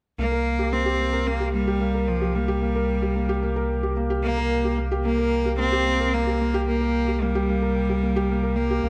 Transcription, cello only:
0, 0, Header, 1, 2, 480
1, 0, Start_track
1, 0, Tempo, 540541
1, 165, Time_signature, 4, 2, 24, 8
1, 7894, End_track
2, 0, Start_track
2, 0, Title_t, "Cello"
2, 0, Program_c, 0, 42
2, 175, Note_on_c, 0, 58, 96
2, 645, Note_on_c, 0, 60, 91
2, 658, Note_off_c, 0, 58, 0
2, 1128, Note_on_c, 0, 58, 96
2, 1142, Note_off_c, 0, 60, 0
2, 1362, Note_off_c, 0, 58, 0
2, 1367, Note_on_c, 0, 55, 91
2, 1843, Note_on_c, 0, 53, 86
2, 1857, Note_off_c, 0, 55, 0
2, 2083, Note_on_c, 0, 55, 79
2, 2096, Note_off_c, 0, 53, 0
2, 3524, Note_off_c, 0, 55, 0
2, 3761, Note_on_c, 0, 58, 104
2, 4209, Note_off_c, 0, 58, 0
2, 4488, Note_on_c, 0, 58, 90
2, 4933, Note_off_c, 0, 58, 0
2, 4968, Note_on_c, 0, 60, 116
2, 5454, Note_on_c, 0, 58, 99
2, 5467, Note_off_c, 0, 60, 0
2, 5929, Note_off_c, 0, 58, 0
2, 5934, Note_on_c, 0, 58, 96
2, 6412, Note_on_c, 0, 55, 85
2, 6426, Note_off_c, 0, 58, 0
2, 7605, Note_on_c, 0, 58, 83
2, 7618, Note_off_c, 0, 55, 0
2, 7894, Note_off_c, 0, 58, 0
2, 7894, End_track
0, 0, End_of_file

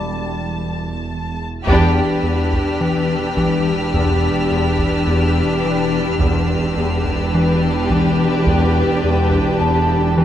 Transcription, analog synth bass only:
0, 0, Header, 1, 2, 480
1, 0, Start_track
1, 0, Key_signature, 1, "minor"
1, 0, Tempo, 1132075
1, 711, Time_signature, 4, 2, 24, 8
1, 4345, End_track
2, 0, Start_track
2, 0, Title_t, "Analog synth bass"
2, 0, Program_c, 0, 38
2, 708, Note_on_c, 0, 40, 106
2, 853, Note_off_c, 0, 40, 0
2, 947, Note_on_c, 0, 40, 54
2, 1092, Note_off_c, 0, 40, 0
2, 1190, Note_on_c, 0, 52, 46
2, 1335, Note_off_c, 0, 52, 0
2, 1430, Note_on_c, 0, 52, 59
2, 1574, Note_off_c, 0, 52, 0
2, 1670, Note_on_c, 0, 40, 68
2, 1815, Note_off_c, 0, 40, 0
2, 1912, Note_on_c, 0, 40, 56
2, 2056, Note_off_c, 0, 40, 0
2, 2152, Note_on_c, 0, 40, 59
2, 2296, Note_off_c, 0, 40, 0
2, 2396, Note_on_c, 0, 52, 52
2, 2538, Note_off_c, 0, 52, 0
2, 2632, Note_on_c, 0, 40, 81
2, 2776, Note_off_c, 0, 40, 0
2, 2874, Note_on_c, 0, 40, 57
2, 3017, Note_off_c, 0, 40, 0
2, 3115, Note_on_c, 0, 52, 47
2, 3258, Note_off_c, 0, 52, 0
2, 3354, Note_on_c, 0, 52, 51
2, 3497, Note_off_c, 0, 52, 0
2, 3596, Note_on_c, 0, 40, 75
2, 3739, Note_off_c, 0, 40, 0
2, 3833, Note_on_c, 0, 40, 59
2, 3977, Note_off_c, 0, 40, 0
2, 4075, Note_on_c, 0, 40, 55
2, 4218, Note_off_c, 0, 40, 0
2, 4314, Note_on_c, 0, 52, 61
2, 4345, Note_off_c, 0, 52, 0
2, 4345, End_track
0, 0, End_of_file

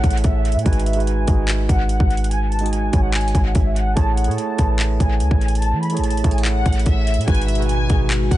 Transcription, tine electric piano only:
0, 0, Header, 1, 2, 480
1, 0, Start_track
1, 0, Tempo, 413793
1, 762, Time_signature, 4, 2, 24, 8
1, 9712, End_track
2, 0, Start_track
2, 0, Title_t, "Tine electric piano"
2, 0, Program_c, 0, 4
2, 0, Control_c, 0, 64, 127
2, 0, Note_on_c, 0, 57, 75
2, 0, Note_on_c, 0, 64, 69
2, 0, Note_on_c, 0, 68, 67
2, 0, Note_on_c, 0, 73, 76
2, 379, Note_off_c, 0, 57, 0
2, 384, Note_off_c, 0, 64, 0
2, 390, Note_off_c, 0, 68, 0
2, 395, Note_off_c, 0, 73, 0
2, 747, Note_on_c, 0, 56, 97
2, 758, Note_on_c, 0, 63, 84
2, 768, Note_on_c, 0, 66, 90
2, 778, Note_on_c, 0, 71, 113
2, 779, Control_c, 0, 64, 0
2, 963, Control_c, 0, 64, 127
2, 1063, Note_off_c, 0, 56, 0
2, 1069, Note_off_c, 0, 63, 0
2, 1074, Note_off_c, 0, 66, 0
2, 1079, Note_off_c, 0, 71, 0
2, 1110, Note_on_c, 0, 56, 72
2, 1120, Note_on_c, 0, 63, 66
2, 1130, Note_on_c, 0, 66, 67
2, 1141, Note_on_c, 0, 71, 83
2, 1425, Note_off_c, 0, 56, 0
2, 1430, Note_off_c, 0, 63, 0
2, 1435, Note_off_c, 0, 66, 0
2, 1440, Note_off_c, 0, 71, 0
2, 1471, Note_on_c, 0, 56, 66
2, 1481, Note_on_c, 0, 63, 65
2, 1491, Note_on_c, 0, 66, 69
2, 1501, Note_on_c, 0, 68, 76
2, 2300, Note_off_c, 0, 56, 0
2, 2305, Note_off_c, 0, 63, 0
2, 2310, Note_off_c, 0, 66, 0
2, 2315, Note_off_c, 0, 68, 0
2, 3027, Note_on_c, 0, 56, 72
2, 3037, Note_on_c, 0, 63, 68
2, 3047, Note_on_c, 0, 66, 69
2, 3057, Note_on_c, 0, 68, 77
2, 3343, Note_off_c, 0, 56, 0
2, 3348, Note_off_c, 0, 63, 0
2, 3353, Note_off_c, 0, 66, 0
2, 3358, Note_off_c, 0, 68, 0
2, 3387, Note_on_c, 0, 56, 75
2, 3398, Note_on_c, 0, 63, 66
2, 3408, Note_on_c, 0, 66, 69
2, 3418, Note_on_c, 0, 73, 79
2, 4218, Note_off_c, 0, 56, 0
2, 4223, Note_off_c, 0, 63, 0
2, 4228, Note_off_c, 0, 66, 0
2, 4233, Note_off_c, 0, 73, 0
2, 4583, Note_on_c, 0, 57, 98
2, 4594, Note_on_c, 0, 64, 93
2, 4604, Note_on_c, 0, 68, 92
2, 4614, Note_on_c, 0, 73, 109
2, 4619, Control_c, 0, 64, 0
2, 4792, Control_c, 0, 64, 127
2, 4901, Note_off_c, 0, 57, 0
2, 4907, Note_off_c, 0, 64, 0
2, 4912, Note_off_c, 0, 68, 0
2, 4917, Note_off_c, 0, 73, 0
2, 4947, Note_on_c, 0, 57, 77
2, 4958, Note_on_c, 0, 64, 69
2, 4967, Note_on_c, 0, 68, 69
2, 4978, Note_on_c, 0, 73, 85
2, 5263, Note_off_c, 0, 57, 0
2, 5269, Note_off_c, 0, 64, 0
2, 5273, Note_off_c, 0, 68, 0
2, 5279, Note_off_c, 0, 73, 0
2, 5302, Note_on_c, 0, 57, 71
2, 5313, Note_on_c, 0, 64, 66
2, 5323, Note_on_c, 0, 68, 66
2, 5333, Note_on_c, 0, 71, 73
2, 6136, Note_off_c, 0, 57, 0
2, 6141, Note_off_c, 0, 64, 0
2, 6146, Note_off_c, 0, 68, 0
2, 6151, Note_off_c, 0, 71, 0
2, 6867, Note_on_c, 0, 57, 79
2, 6877, Note_on_c, 0, 64, 67
2, 6887, Note_on_c, 0, 68, 63
2, 6897, Note_on_c, 0, 73, 80
2, 7183, Note_off_c, 0, 57, 0
2, 7188, Note_off_c, 0, 64, 0
2, 7193, Note_off_c, 0, 68, 0
2, 7198, Note_off_c, 0, 73, 0
2, 7229, Note_on_c, 0, 57, 77
2, 7239, Note_on_c, 0, 64, 67
2, 7250, Note_on_c, 0, 68, 67
2, 7260, Note_on_c, 0, 73, 77
2, 8059, Note_off_c, 0, 57, 0
2, 8064, Note_off_c, 0, 64, 0
2, 8069, Note_off_c, 0, 68, 0
2, 8074, Note_off_c, 0, 73, 0
2, 8428, Note_on_c, 0, 56, 98
2, 8437, Note_on_c, 0, 63, 84
2, 8448, Note_on_c, 0, 66, 91
2, 8457, Control_c, 0, 64, 0
2, 8458, Note_on_c, 0, 71, 111
2, 8663, Control_c, 0, 64, 127
2, 8744, Note_off_c, 0, 56, 0
2, 8748, Note_off_c, 0, 63, 0
2, 8754, Note_off_c, 0, 66, 0
2, 8759, Note_off_c, 0, 71, 0
2, 8791, Note_on_c, 0, 56, 70
2, 8800, Note_on_c, 0, 63, 66
2, 8811, Note_on_c, 0, 66, 65
2, 8821, Note_on_c, 0, 71, 84
2, 9105, Note_off_c, 0, 56, 0
2, 9110, Note_off_c, 0, 63, 0
2, 9115, Note_off_c, 0, 66, 0
2, 9120, Note_off_c, 0, 71, 0
2, 9150, Note_on_c, 0, 56, 66
2, 9160, Note_on_c, 0, 63, 62
2, 9170, Note_on_c, 0, 66, 72
2, 9181, Note_on_c, 0, 68, 80
2, 9712, Note_off_c, 0, 56, 0
2, 9712, Note_off_c, 0, 63, 0
2, 9712, Note_off_c, 0, 66, 0
2, 9712, Note_off_c, 0, 68, 0
2, 9712, End_track
0, 0, End_of_file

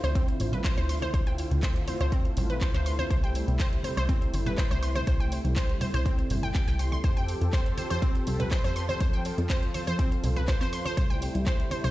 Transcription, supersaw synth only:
0, 0, Header, 1, 2, 480
1, 0, Start_track
1, 0, Key_signature, 0, "major"
1, 0, Tempo, 491803
1, 1111, Time_signature, 4, 2, 24, 8
1, 11621, End_track
2, 0, Start_track
2, 0, Title_t, "Supersaw synth"
2, 0, Program_c, 0, 81
2, 0, Note_on_c, 0, 50, 79
2, 0, Note_on_c, 0, 57, 70
2, 0, Note_on_c, 0, 64, 72
2, 0, Note_on_c, 0, 65, 85
2, 2992, Note_off_c, 0, 50, 0
2, 2992, Note_off_c, 0, 64, 0
2, 2992, Note_off_c, 0, 65, 0
2, 3033, Note_on_c, 0, 55, 71
2, 3033, Note_on_c, 0, 64, 88
2, 3034, Note_on_c, 0, 48, 76
2, 6832, Note_off_c, 0, 57, 0
2, 6834, Note_off_c, 0, 48, 0
2, 6834, Note_off_c, 0, 55, 0
2, 6834, Note_off_c, 0, 64, 0
2, 6870, Note_on_c, 0, 53, 80
2, 6870, Note_on_c, 0, 69, 86
2, 6871, Note_on_c, 0, 60, 70
2, 6871, Note_on_c, 0, 67, 71
2, 8772, Note_off_c, 0, 67, 0
2, 8789, Note_on_c, 0, 65, 70
2, 10672, Note_off_c, 0, 53, 0
2, 10672, Note_off_c, 0, 60, 0
2, 10672, Note_off_c, 0, 69, 0
2, 10691, Note_off_c, 0, 65, 0
2, 10709, Note_on_c, 0, 48, 76
2, 10709, Note_on_c, 0, 55, 71
2, 10710, Note_on_c, 0, 57, 71
2, 10710, Note_on_c, 0, 64, 88
2, 11621, Note_off_c, 0, 48, 0
2, 11621, Note_off_c, 0, 55, 0
2, 11621, Note_off_c, 0, 57, 0
2, 11621, Note_off_c, 0, 64, 0
2, 11621, End_track
0, 0, End_of_file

